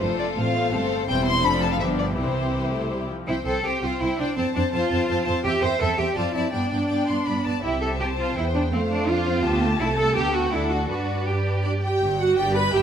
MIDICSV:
0, 0, Header, 1, 6, 480
1, 0, Start_track
1, 0, Key_signature, 0, "major"
1, 0, Tempo, 362538
1, 12, Time_signature, 3, 2, 24, 8
1, 12979, Key_signature, 1, "major"
1, 13932, Tempo, 368777
1, 16927, End_track
2, 0, Start_track
2, 0, Title_t, "Violin section"
2, 0, Program_c, 0, 48
2, 4, Note_on_c, 0, 72, 47
2, 241, Note_off_c, 0, 72, 0
2, 243, Note_on_c, 0, 74, 49
2, 340, Note_off_c, 0, 74, 0
2, 479, Note_on_c, 0, 77, 52
2, 1179, Note_off_c, 0, 77, 0
2, 1432, Note_on_c, 0, 79, 69
2, 1652, Note_off_c, 0, 79, 0
2, 1667, Note_on_c, 0, 84, 76
2, 1902, Note_off_c, 0, 84, 0
2, 1911, Note_on_c, 0, 83, 72
2, 2149, Note_off_c, 0, 83, 0
2, 2158, Note_on_c, 0, 81, 64
2, 2274, Note_off_c, 0, 81, 0
2, 2287, Note_on_c, 0, 77, 57
2, 2331, Note_off_c, 0, 77, 0
2, 2380, Note_on_c, 0, 76, 59
2, 2479, Note_off_c, 0, 76, 0
2, 2636, Note_on_c, 0, 74, 50
2, 2733, Note_off_c, 0, 74, 0
2, 2876, Note_on_c, 0, 72, 47
2, 3833, Note_off_c, 0, 72, 0
2, 4334, Note_on_c, 0, 79, 36
2, 4566, Note_off_c, 0, 79, 0
2, 4582, Note_on_c, 0, 79, 37
2, 4804, Note_off_c, 0, 79, 0
2, 4820, Note_on_c, 0, 79, 39
2, 5041, Note_off_c, 0, 79, 0
2, 5057, Note_on_c, 0, 79, 37
2, 5288, Note_off_c, 0, 79, 0
2, 5303, Note_on_c, 0, 79, 40
2, 5541, Note_off_c, 0, 79, 0
2, 5556, Note_on_c, 0, 79, 45
2, 5786, Note_off_c, 0, 79, 0
2, 5794, Note_on_c, 0, 81, 40
2, 6003, Note_off_c, 0, 81, 0
2, 6019, Note_on_c, 0, 81, 42
2, 6231, Note_off_c, 0, 81, 0
2, 6247, Note_on_c, 0, 81, 43
2, 6474, Note_off_c, 0, 81, 0
2, 6490, Note_on_c, 0, 81, 43
2, 6702, Note_off_c, 0, 81, 0
2, 6718, Note_on_c, 0, 81, 51
2, 6936, Note_off_c, 0, 81, 0
2, 6952, Note_on_c, 0, 81, 46
2, 7192, Note_off_c, 0, 81, 0
2, 7202, Note_on_c, 0, 79, 49
2, 7419, Note_off_c, 0, 79, 0
2, 7435, Note_on_c, 0, 79, 42
2, 7666, Note_off_c, 0, 79, 0
2, 7682, Note_on_c, 0, 79, 45
2, 7896, Note_off_c, 0, 79, 0
2, 7912, Note_on_c, 0, 79, 41
2, 8150, Note_off_c, 0, 79, 0
2, 8157, Note_on_c, 0, 81, 42
2, 8381, Note_off_c, 0, 81, 0
2, 8397, Note_on_c, 0, 81, 36
2, 8635, Note_on_c, 0, 79, 39
2, 8638, Note_off_c, 0, 81, 0
2, 8877, Note_off_c, 0, 79, 0
2, 8893, Note_on_c, 0, 79, 37
2, 9106, Note_off_c, 0, 79, 0
2, 9122, Note_on_c, 0, 79, 47
2, 9355, Note_off_c, 0, 79, 0
2, 9364, Note_on_c, 0, 84, 43
2, 9608, Note_on_c, 0, 83, 46
2, 9614, Note_off_c, 0, 84, 0
2, 9855, Note_on_c, 0, 81, 44
2, 9859, Note_off_c, 0, 83, 0
2, 10099, Note_on_c, 0, 76, 34
2, 10104, Note_off_c, 0, 81, 0
2, 10555, Note_off_c, 0, 76, 0
2, 10595, Note_on_c, 0, 81, 37
2, 11068, Note_on_c, 0, 79, 40
2, 11078, Note_off_c, 0, 81, 0
2, 11551, Note_off_c, 0, 79, 0
2, 11552, Note_on_c, 0, 77, 43
2, 12021, Note_off_c, 0, 77, 0
2, 12037, Note_on_c, 0, 77, 49
2, 12499, Note_off_c, 0, 77, 0
2, 12505, Note_on_c, 0, 81, 57
2, 13434, Note_off_c, 0, 81, 0
2, 13458, Note_on_c, 0, 79, 47
2, 13936, Note_off_c, 0, 79, 0
2, 13942, Note_on_c, 0, 78, 45
2, 14419, Note_off_c, 0, 78, 0
2, 14419, Note_on_c, 0, 74, 33
2, 15607, Note_off_c, 0, 74, 0
2, 16348, Note_on_c, 0, 74, 47
2, 16785, Note_off_c, 0, 74, 0
2, 16822, Note_on_c, 0, 76, 51
2, 16927, Note_off_c, 0, 76, 0
2, 16927, End_track
3, 0, Start_track
3, 0, Title_t, "Violin section"
3, 0, Program_c, 1, 48
3, 18, Note_on_c, 1, 65, 41
3, 19, Note_on_c, 1, 69, 38
3, 491, Note_off_c, 1, 69, 0
3, 498, Note_on_c, 1, 72, 39
3, 946, Note_off_c, 1, 65, 0
3, 948, Note_off_c, 1, 72, 0
3, 964, Note_on_c, 1, 72, 43
3, 966, Note_on_c, 1, 69, 41
3, 1425, Note_off_c, 1, 72, 0
3, 1435, Note_off_c, 1, 69, 0
3, 1440, Note_on_c, 1, 64, 48
3, 1452, Note_on_c, 1, 72, 46
3, 1879, Note_off_c, 1, 64, 0
3, 1885, Note_off_c, 1, 72, 0
3, 1901, Note_on_c, 1, 62, 49
3, 1908, Note_on_c, 1, 69, 45
3, 2386, Note_off_c, 1, 62, 0
3, 2390, Note_off_c, 1, 69, 0
3, 2396, Note_on_c, 1, 67, 43
3, 2404, Note_on_c, 1, 62, 43
3, 2863, Note_off_c, 1, 67, 0
3, 2875, Note_on_c, 1, 64, 36
3, 2876, Note_off_c, 1, 62, 0
3, 2879, Note_on_c, 1, 67, 39
3, 4072, Note_off_c, 1, 64, 0
3, 4074, Note_off_c, 1, 67, 0
3, 4347, Note_on_c, 1, 72, 39
3, 4559, Note_off_c, 1, 72, 0
3, 4575, Note_on_c, 1, 72, 39
3, 4814, Note_off_c, 1, 72, 0
3, 4830, Note_on_c, 1, 72, 37
3, 5051, Note_off_c, 1, 72, 0
3, 5067, Note_on_c, 1, 72, 40
3, 5292, Note_off_c, 1, 72, 0
3, 5308, Note_on_c, 1, 72, 37
3, 5532, Note_off_c, 1, 72, 0
3, 5548, Note_on_c, 1, 72, 43
3, 5761, Note_off_c, 1, 72, 0
3, 5777, Note_on_c, 1, 72, 45
3, 6014, Note_off_c, 1, 72, 0
3, 6029, Note_on_c, 1, 72, 46
3, 6250, Note_off_c, 1, 72, 0
3, 6265, Note_on_c, 1, 72, 47
3, 6486, Note_off_c, 1, 72, 0
3, 6502, Note_on_c, 1, 72, 46
3, 6732, Note_off_c, 1, 72, 0
3, 6746, Note_on_c, 1, 72, 44
3, 6956, Note_off_c, 1, 72, 0
3, 6972, Note_on_c, 1, 72, 47
3, 7202, Note_off_c, 1, 72, 0
3, 7234, Note_on_c, 1, 76, 45
3, 7447, Note_off_c, 1, 76, 0
3, 7463, Note_on_c, 1, 76, 44
3, 7676, Note_off_c, 1, 76, 0
3, 7692, Note_on_c, 1, 76, 44
3, 7903, Note_off_c, 1, 76, 0
3, 7918, Note_on_c, 1, 76, 44
3, 8150, Note_on_c, 1, 74, 39
3, 8153, Note_off_c, 1, 76, 0
3, 8384, Note_off_c, 1, 74, 0
3, 8400, Note_on_c, 1, 74, 38
3, 8627, Note_off_c, 1, 74, 0
3, 8643, Note_on_c, 1, 74, 42
3, 8872, Note_off_c, 1, 74, 0
3, 8888, Note_on_c, 1, 74, 37
3, 9109, Note_off_c, 1, 74, 0
3, 9125, Note_on_c, 1, 74, 37
3, 9347, Note_off_c, 1, 74, 0
3, 9363, Note_on_c, 1, 74, 38
3, 9591, Note_off_c, 1, 74, 0
3, 9607, Note_on_c, 1, 74, 33
3, 9847, Note_off_c, 1, 74, 0
3, 9863, Note_on_c, 1, 74, 38
3, 10103, Note_off_c, 1, 74, 0
3, 10107, Note_on_c, 1, 67, 38
3, 10559, Note_off_c, 1, 67, 0
3, 10587, Note_on_c, 1, 72, 44
3, 11544, Note_off_c, 1, 72, 0
3, 11560, Note_on_c, 1, 72, 47
3, 12489, Note_off_c, 1, 72, 0
3, 12514, Note_on_c, 1, 67, 52
3, 12977, Note_on_c, 1, 69, 54
3, 12984, Note_off_c, 1, 67, 0
3, 13928, Note_off_c, 1, 69, 0
3, 13943, Note_on_c, 1, 69, 39
3, 14410, Note_off_c, 1, 69, 0
3, 14412, Note_on_c, 1, 71, 34
3, 15386, Note_off_c, 1, 71, 0
3, 15390, Note_on_c, 1, 74, 39
3, 15487, Note_off_c, 1, 74, 0
3, 15633, Note_on_c, 1, 79, 44
3, 16098, Note_off_c, 1, 79, 0
3, 16104, Note_on_c, 1, 78, 54
3, 16327, Note_on_c, 1, 79, 55
3, 16342, Note_off_c, 1, 78, 0
3, 16566, Note_off_c, 1, 79, 0
3, 16569, Note_on_c, 1, 83, 59
3, 16805, Note_off_c, 1, 83, 0
3, 16811, Note_on_c, 1, 79, 55
3, 16927, Note_off_c, 1, 79, 0
3, 16927, End_track
4, 0, Start_track
4, 0, Title_t, "Cello section"
4, 0, Program_c, 2, 48
4, 14, Note_on_c, 2, 41, 42
4, 455, Note_off_c, 2, 41, 0
4, 491, Note_on_c, 2, 45, 49
4, 930, Note_off_c, 2, 45, 0
4, 960, Note_on_c, 2, 43, 54
4, 1399, Note_off_c, 2, 43, 0
4, 1432, Note_on_c, 2, 40, 50
4, 1875, Note_off_c, 2, 40, 0
4, 1903, Note_on_c, 2, 41, 53
4, 2385, Note_on_c, 2, 43, 46
4, 2387, Note_off_c, 2, 41, 0
4, 2873, Note_on_c, 2, 48, 38
4, 2876, Note_off_c, 2, 43, 0
4, 4096, Note_off_c, 2, 48, 0
4, 4334, Note_on_c, 2, 64, 61
4, 4433, Note_off_c, 2, 64, 0
4, 4578, Note_on_c, 2, 69, 61
4, 4818, Note_off_c, 2, 69, 0
4, 4823, Note_on_c, 2, 67, 56
4, 5066, Note_off_c, 2, 67, 0
4, 5067, Note_on_c, 2, 65, 57
4, 5304, Note_on_c, 2, 64, 64
4, 5308, Note_off_c, 2, 65, 0
4, 5544, Note_on_c, 2, 62, 58
4, 5546, Note_off_c, 2, 64, 0
4, 5783, Note_on_c, 2, 60, 62
4, 5784, Note_off_c, 2, 62, 0
4, 5878, Note_off_c, 2, 60, 0
4, 6018, Note_on_c, 2, 62, 63
4, 6114, Note_off_c, 2, 62, 0
4, 6254, Note_on_c, 2, 65, 63
4, 6954, Note_off_c, 2, 65, 0
4, 7200, Note_on_c, 2, 67, 74
4, 7422, Note_off_c, 2, 67, 0
4, 7436, Note_on_c, 2, 72, 73
4, 7674, Note_on_c, 2, 69, 75
4, 7676, Note_off_c, 2, 72, 0
4, 7913, Note_on_c, 2, 67, 60
4, 7914, Note_off_c, 2, 69, 0
4, 8150, Note_on_c, 2, 65, 60
4, 8155, Note_off_c, 2, 67, 0
4, 8397, Note_off_c, 2, 65, 0
4, 8397, Note_on_c, 2, 64, 53
4, 8638, Note_off_c, 2, 64, 0
4, 8641, Note_on_c, 2, 62, 54
4, 9839, Note_off_c, 2, 62, 0
4, 10099, Note_on_c, 2, 64, 61
4, 10329, Note_off_c, 2, 64, 0
4, 10346, Note_on_c, 2, 69, 60
4, 10444, Note_off_c, 2, 69, 0
4, 10586, Note_on_c, 2, 67, 56
4, 10685, Note_off_c, 2, 67, 0
4, 10836, Note_on_c, 2, 65, 59
4, 11072, Note_off_c, 2, 65, 0
4, 11073, Note_on_c, 2, 64, 60
4, 11170, Note_off_c, 2, 64, 0
4, 11315, Note_on_c, 2, 62, 58
4, 11410, Note_off_c, 2, 62, 0
4, 11550, Note_on_c, 2, 60, 67
4, 11646, Note_off_c, 2, 60, 0
4, 11791, Note_on_c, 2, 62, 71
4, 12025, Note_off_c, 2, 62, 0
4, 12030, Note_on_c, 2, 65, 72
4, 12742, Note_off_c, 2, 65, 0
4, 12977, Note_on_c, 2, 64, 72
4, 13072, Note_off_c, 2, 64, 0
4, 13212, Note_on_c, 2, 69, 76
4, 13447, Note_off_c, 2, 69, 0
4, 13447, Note_on_c, 2, 67, 74
4, 13684, Note_off_c, 2, 67, 0
4, 13688, Note_on_c, 2, 66, 65
4, 13931, Note_off_c, 2, 66, 0
4, 13939, Note_on_c, 2, 64, 57
4, 14174, Note_on_c, 2, 66, 54
4, 14176, Note_off_c, 2, 64, 0
4, 14393, Note_off_c, 2, 66, 0
4, 14409, Note_on_c, 2, 66, 53
4, 14890, Note_off_c, 2, 66, 0
4, 14904, Note_on_c, 2, 67, 43
4, 15630, Note_off_c, 2, 67, 0
4, 15876, Note_on_c, 2, 43, 51
4, 16291, Note_off_c, 2, 43, 0
4, 16347, Note_on_c, 2, 43, 54
4, 16762, Note_off_c, 2, 43, 0
4, 16819, Note_on_c, 2, 43, 51
4, 16927, Note_off_c, 2, 43, 0
4, 16927, End_track
5, 0, Start_track
5, 0, Title_t, "Viola section"
5, 0, Program_c, 3, 48
5, 10, Note_on_c, 3, 60, 37
5, 11, Note_on_c, 3, 57, 36
5, 474, Note_off_c, 3, 60, 0
5, 475, Note_off_c, 3, 57, 0
5, 490, Note_on_c, 3, 60, 43
5, 491, Note_on_c, 3, 57, 39
5, 722, Note_off_c, 3, 60, 0
5, 728, Note_on_c, 3, 59, 45
5, 947, Note_off_c, 3, 57, 0
5, 960, Note_on_c, 3, 60, 44
5, 963, Note_off_c, 3, 59, 0
5, 963, Note_on_c, 3, 57, 46
5, 1412, Note_off_c, 3, 60, 0
5, 1427, Note_on_c, 3, 60, 47
5, 1430, Note_on_c, 3, 55, 45
5, 1434, Note_off_c, 3, 57, 0
5, 1872, Note_off_c, 3, 60, 0
5, 1873, Note_off_c, 3, 55, 0
5, 1908, Note_on_c, 3, 53, 53
5, 1910, Note_on_c, 3, 60, 48
5, 2374, Note_off_c, 3, 53, 0
5, 2381, Note_off_c, 3, 60, 0
5, 2389, Note_on_c, 3, 53, 45
5, 2390, Note_on_c, 3, 59, 49
5, 2869, Note_off_c, 3, 53, 0
5, 2879, Note_off_c, 3, 59, 0
5, 2879, Note_on_c, 3, 52, 38
5, 2883, Note_on_c, 3, 60, 36
5, 3311, Note_off_c, 3, 60, 0
5, 3318, Note_off_c, 3, 52, 0
5, 3367, Note_on_c, 3, 52, 37
5, 3593, Note_off_c, 3, 52, 0
5, 3607, Note_on_c, 3, 57, 38
5, 3848, Note_on_c, 3, 55, 33
5, 3852, Note_off_c, 3, 57, 0
5, 4088, Note_on_c, 3, 53, 32
5, 4096, Note_off_c, 3, 55, 0
5, 4333, Note_on_c, 3, 60, 40
5, 4338, Note_off_c, 3, 53, 0
5, 4558, Note_off_c, 3, 60, 0
5, 4573, Note_on_c, 3, 60, 36
5, 4806, Note_off_c, 3, 60, 0
5, 4822, Note_on_c, 3, 60, 39
5, 5049, Note_off_c, 3, 60, 0
5, 5065, Note_on_c, 3, 60, 38
5, 5290, Note_off_c, 3, 60, 0
5, 5306, Note_on_c, 3, 60, 45
5, 5530, Note_off_c, 3, 60, 0
5, 5546, Note_on_c, 3, 60, 37
5, 5769, Note_off_c, 3, 60, 0
5, 5785, Note_on_c, 3, 60, 47
5, 6010, Note_off_c, 3, 60, 0
5, 6026, Note_on_c, 3, 60, 40
5, 6235, Note_off_c, 3, 60, 0
5, 6251, Note_on_c, 3, 60, 45
5, 6480, Note_off_c, 3, 60, 0
5, 6496, Note_on_c, 3, 60, 44
5, 6720, Note_off_c, 3, 60, 0
5, 6736, Note_on_c, 3, 60, 47
5, 6957, Note_off_c, 3, 60, 0
5, 6973, Note_on_c, 3, 60, 45
5, 7199, Note_off_c, 3, 60, 0
5, 7215, Note_on_c, 3, 60, 45
5, 7430, Note_off_c, 3, 60, 0
5, 7446, Note_on_c, 3, 60, 44
5, 7669, Note_off_c, 3, 60, 0
5, 7685, Note_on_c, 3, 60, 46
5, 7905, Note_off_c, 3, 60, 0
5, 7921, Note_on_c, 3, 60, 42
5, 8137, Note_off_c, 3, 60, 0
5, 8152, Note_on_c, 3, 60, 41
5, 8384, Note_off_c, 3, 60, 0
5, 8399, Note_on_c, 3, 60, 37
5, 8639, Note_off_c, 3, 60, 0
5, 8646, Note_on_c, 3, 59, 42
5, 8883, Note_off_c, 3, 59, 0
5, 8899, Note_on_c, 3, 59, 34
5, 9121, Note_off_c, 3, 59, 0
5, 9137, Note_on_c, 3, 59, 37
5, 9366, Note_off_c, 3, 59, 0
5, 9382, Note_on_c, 3, 59, 35
5, 9604, Note_off_c, 3, 59, 0
5, 9620, Note_on_c, 3, 59, 38
5, 9840, Note_off_c, 3, 59, 0
5, 9856, Note_on_c, 3, 59, 34
5, 10100, Note_off_c, 3, 59, 0
5, 10105, Note_on_c, 3, 60, 41
5, 11022, Note_off_c, 3, 60, 0
5, 11067, Note_on_c, 3, 59, 45
5, 11550, Note_off_c, 3, 59, 0
5, 11555, Note_on_c, 3, 57, 47
5, 12030, Note_off_c, 3, 57, 0
5, 12033, Note_on_c, 3, 62, 52
5, 12269, Note_off_c, 3, 62, 0
5, 12274, Note_on_c, 3, 60, 57
5, 12508, Note_off_c, 3, 60, 0
5, 12508, Note_on_c, 3, 59, 65
5, 12742, Note_on_c, 3, 57, 57
5, 12744, Note_off_c, 3, 59, 0
5, 12964, Note_off_c, 3, 57, 0
5, 12980, Note_on_c, 3, 57, 54
5, 13444, Note_off_c, 3, 57, 0
5, 13452, Note_on_c, 3, 59, 47
5, 13932, Note_on_c, 3, 62, 44
5, 13933, Note_off_c, 3, 59, 0
5, 14403, Note_off_c, 3, 62, 0
5, 14418, Note_on_c, 3, 62, 34
5, 15370, Note_off_c, 3, 62, 0
5, 15392, Note_on_c, 3, 62, 45
5, 15488, Note_off_c, 3, 62, 0
5, 15621, Note_on_c, 3, 67, 46
5, 16092, Note_off_c, 3, 67, 0
5, 16105, Note_on_c, 3, 66, 55
5, 16338, Note_off_c, 3, 66, 0
5, 16339, Note_on_c, 3, 67, 62
5, 16570, Note_on_c, 3, 71, 65
5, 16577, Note_off_c, 3, 67, 0
5, 16811, Note_off_c, 3, 71, 0
5, 16812, Note_on_c, 3, 67, 65
5, 16908, Note_off_c, 3, 67, 0
5, 16927, End_track
6, 0, Start_track
6, 0, Title_t, "Double bass section"
6, 0, Program_c, 4, 48
6, 12, Note_on_c, 4, 29, 42
6, 455, Note_off_c, 4, 29, 0
6, 486, Note_on_c, 4, 33, 47
6, 927, Note_off_c, 4, 33, 0
6, 962, Note_on_c, 4, 31, 50
6, 1401, Note_off_c, 4, 31, 0
6, 1435, Note_on_c, 4, 28, 49
6, 1876, Note_off_c, 4, 28, 0
6, 1904, Note_on_c, 4, 29, 47
6, 2388, Note_off_c, 4, 29, 0
6, 2389, Note_on_c, 4, 31, 43
6, 2878, Note_off_c, 4, 31, 0
6, 2880, Note_on_c, 4, 36, 37
6, 4099, Note_off_c, 4, 36, 0
6, 4337, Note_on_c, 4, 36, 40
6, 4435, Note_off_c, 4, 36, 0
6, 4575, Note_on_c, 4, 36, 42
6, 4674, Note_off_c, 4, 36, 0
6, 4822, Note_on_c, 4, 36, 42
6, 4919, Note_off_c, 4, 36, 0
6, 5063, Note_on_c, 4, 36, 42
6, 5160, Note_off_c, 4, 36, 0
6, 5307, Note_on_c, 4, 36, 42
6, 5403, Note_off_c, 4, 36, 0
6, 5544, Note_on_c, 4, 36, 42
6, 5640, Note_off_c, 4, 36, 0
6, 5781, Note_on_c, 4, 41, 44
6, 5877, Note_off_c, 4, 41, 0
6, 6020, Note_on_c, 4, 41, 50
6, 6116, Note_off_c, 4, 41, 0
6, 6259, Note_on_c, 4, 41, 48
6, 6354, Note_off_c, 4, 41, 0
6, 6496, Note_on_c, 4, 41, 53
6, 6591, Note_off_c, 4, 41, 0
6, 6735, Note_on_c, 4, 41, 52
6, 6830, Note_off_c, 4, 41, 0
6, 6969, Note_on_c, 4, 41, 52
6, 7064, Note_off_c, 4, 41, 0
6, 7202, Note_on_c, 4, 40, 52
6, 7297, Note_off_c, 4, 40, 0
6, 7439, Note_on_c, 4, 40, 54
6, 7534, Note_off_c, 4, 40, 0
6, 7677, Note_on_c, 4, 40, 51
6, 7773, Note_off_c, 4, 40, 0
6, 7920, Note_on_c, 4, 40, 46
6, 8016, Note_off_c, 4, 40, 0
6, 8166, Note_on_c, 4, 41, 45
6, 8261, Note_off_c, 4, 41, 0
6, 8398, Note_on_c, 4, 41, 40
6, 8496, Note_off_c, 4, 41, 0
6, 8643, Note_on_c, 4, 43, 41
6, 8741, Note_off_c, 4, 43, 0
6, 8883, Note_on_c, 4, 43, 43
6, 8982, Note_off_c, 4, 43, 0
6, 9135, Note_on_c, 4, 43, 40
6, 9232, Note_off_c, 4, 43, 0
6, 9383, Note_on_c, 4, 43, 41
6, 9479, Note_off_c, 4, 43, 0
6, 9623, Note_on_c, 4, 43, 40
6, 9720, Note_off_c, 4, 43, 0
6, 9874, Note_on_c, 4, 43, 37
6, 9970, Note_off_c, 4, 43, 0
6, 10115, Note_on_c, 4, 36, 41
6, 11028, Note_off_c, 4, 36, 0
6, 11075, Note_on_c, 4, 40, 43
6, 11554, Note_off_c, 4, 40, 0
6, 11559, Note_on_c, 4, 41, 50
6, 12505, Note_on_c, 4, 38, 50
6, 12507, Note_off_c, 4, 41, 0
6, 12979, Note_off_c, 4, 38, 0
6, 12983, Note_on_c, 4, 36, 53
6, 13446, Note_off_c, 4, 36, 0
6, 13460, Note_on_c, 4, 38, 54
6, 13928, Note_off_c, 4, 38, 0
6, 13943, Note_on_c, 4, 38, 44
6, 14410, Note_off_c, 4, 38, 0
6, 14421, Note_on_c, 4, 43, 38
6, 15632, Note_off_c, 4, 43, 0
6, 15872, Note_on_c, 4, 31, 47
6, 16289, Note_off_c, 4, 31, 0
6, 16341, Note_on_c, 4, 31, 48
6, 16759, Note_off_c, 4, 31, 0
6, 16818, Note_on_c, 4, 31, 48
6, 16927, Note_off_c, 4, 31, 0
6, 16927, End_track
0, 0, End_of_file